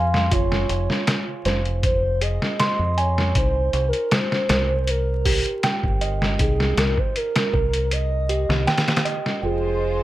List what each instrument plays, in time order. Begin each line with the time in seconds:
Already playing: fingered electric bass F2, soft synth lead F5, music box G#5
0.14 snare
0.31 fingered electric bass F1, music box F4, soft synth lead C#5, kick, closed hi-hat
0.52 snare
0.69 fingered electric bass F1, closed hi-hat
0.90 snare
1.07 snare, closed hi-hat
1.45 fingered electric bass F1, music box C5, snare, closed hi-hat
1.65 closed hi-hat
1.83 soft synth lead C5, kick, closed hi-hat
2.21 music box G#4, soft synth lead D#5, closed hi-hat
2.42 snare
2.60 music box C6, snare, closed hi-hat
2.79 fingered electric bass F2
2.98 soft synth lead C#5, music box G#5, closed hi-hat
3.18 snare
3.35 fingered electric bass C2, music box D#4, soft synth lead C5, kick, closed hi-hat
3.73 fingered electric bass C2, closed hi-hat
3.88 soft synth lead A#4
3.93 closed hi-hat
4.11 soft synth lead C5, snare, closed hi-hat
4.32 snare
4.49 fingered electric bass C2, music box A#4, snare, closed hi-hat
4.88 soft synth lead A#4, closed hi-hat
5.25 music box G4, kick, open hi-hat
5.46 closed hi-hat
5.63 music box G5, snare, closed hi-hat
5.83 fingered electric bass G1, kick
6.01 music box D#5, closed hi-hat
6.22 snare
6.39 fingered electric bass C2, music box D#4, soft synth lead G#4, kick, closed hi-hat
6.60 snare
6.77 fingered electric bass C2, soft synth lead A#4, snare, closed hi-hat
6.98 soft synth lead C5, kick
7.16 soft synth lead A#4, closed hi-hat
7.36 snare, closed hi-hat
7.53 fingered electric bass C2, music box A#4, kick
7.73 closed hi-hat
7.91 soft synth lead D#5, closed hi-hat
8.29 music box G4, closed hi-hat
8.49 fingered electric bass C2, snare
8.67 music box G5, snare, closed hi-hat
8.78 snare, closed hi-hat
8.88 snare, closed hi-hat
8.96 snare, closed hi-hat
9.05 music box D#5, closed hi-hat
9.26 snare
9.43 fingered electric bass F1, violin section G#3 F4 C5, music box F4, soft synth lead G#4